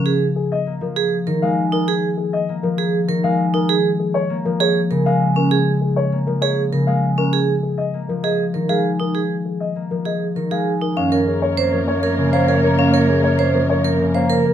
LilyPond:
<<
  \new Staff \with { instrumentName = "Clarinet" } { \time 6/4 \key aes \mixolydian \tempo 4 = 198 r1. | r1. | r1. | r1. |
r1. | r1. | des''8 des''8 des''8 des''8 des''8 des''8 des''8 des''8 des''8 des''8 des''8 des''8 | des''8 des''8 des''8 des''8 des''8 des''8 des''8 des''8 des''8 des''8 des''8 r8 | }
  \new Staff \with { instrumentName = "Grand piano" } { \time 6/4 \key aes \mixolydian r4 aes'8 ees''8 r8 bes'8 r4. f''8 r8 bes'8 | r4 aes'8 ees''8 r8 bes'8 r4. f''8 r8 bes'8 | r4 aes'8 des''8 r8 bes'8 des''8 r4 f''8 r8 bes'8 | r4 aes'8 des''8 r8 bes'8 des''8 r4 f''8 r8 bes'8 |
r4 aes'8 ees''8 r8 bes'8 ees''8 r4 f''8 r8 bes'8 | r4 aes'8 ees''8 r8 bes'8 ees''8 r4 f''8 r8 bes'8 | f''8 r8 aes'8 des''8 r8 bes'8 des''8 r4 f''8 r8 bes'8 | f''8 r8 aes'8 des''8 r8 bes'8 des''8 r4 f''8 r8 bes'8 | }
  \new Staff \with { instrumentName = "Vibraphone" } { \time 6/4 \key aes \mixolydian aes'8 r2 r8 aes'8 r8 bes'8 r4 ees'8 | aes'8 r2 r8 aes'8 r8 bes'8 r4 ees'8 | aes'8 r2 r8 aes'8 r8 bes'8 r4 des'8 | aes'8 r2 r8 aes'8 r8 bes'8 r4 des'8 |
aes'8 r2 r8 aes'8 r8 bes'8 aes'8 r8 ees'8 | aes'8 r2 r8 aes'8 r8 bes'8 aes'8 r8 ees'8 | des'8 bes'8 r4 c''8 r4 bes'8 r8 c''8 bes'8 r8 | des'8 bes'8 r4 c''8 r4 bes'8 r8 c''8 bes'8 r8 | }
  \new Staff \with { instrumentName = "String section" } { \time 6/4 \key aes \mixolydian r1. | r1. | r1. | r1. |
r1. | r1. | <bes bes'>1.~ | <bes bes'>1~ <bes bes'>4. r8 | }
  \new Staff \with { instrumentName = "Harp" } { \clef bass \time 6/4 \key aes \mixolydian bes2 bes8 f4. ees8 aes4.~ | aes2 bes8 f4. ees8 aes4.~ | aes2 bes8 f4. des8 aes4.~ | aes2 bes8 f4. des8 aes4.~ |
aes2 bes8 f4. ees8 aes4.~ | aes2 bes8 f4. ees8 aes4.~ | aes2 c'8 f4 c'8 des8 bes4 bes8~ | bes2 c'8 f4 c'8 des8 bes4 bes8 | }
  \new Staff \with { instrumentName = "Bass clarinet" } { \clef bass \time 6/4 \key aes \mixolydian r1. | r1. | r1. | r1. |
r1. | r1. | ges,1.~ | ges,1. | }
>>